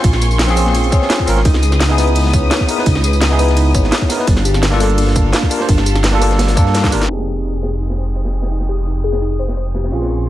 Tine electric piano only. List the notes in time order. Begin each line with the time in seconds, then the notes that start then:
0.47 C4 C#4 F4 G#4
0.55 C4 C#4 F4 G#4
0.91 C4 C#4 F4 G#4
1.26 C4 C#4 F4 A#4
1.88 B3 D#4 E4 G#4
1.95 B3 D#4
1.99 E4 G#4
2.67 B3 D#4 E4 A#4
2.76 B3 D#4 E4 B4
3.29 B3 D#4 E4 G#4
3.36 B3 D#4
3.40 E4 G#4
4.08 B3 D#4 E4 A#4
4.17 B3 D#4 E4 B4
4.70 A#3 D4 F4 A4
4.77 A#3 D4
4.82 F4 A4
5.49 A#3 D4 F4 A#4
5.59 A#3 D4 F4 C5
6.11 A#3 D4 F4 A4
6.20 A#3 D4 F4 A4
6.55 A#3 D4 F4 A4
6.90 A#3 D4 F4 A#4
7.06 C4 D#4
7.11 G4 G#4
9.89 C4 C#4
9.93 F4 G#4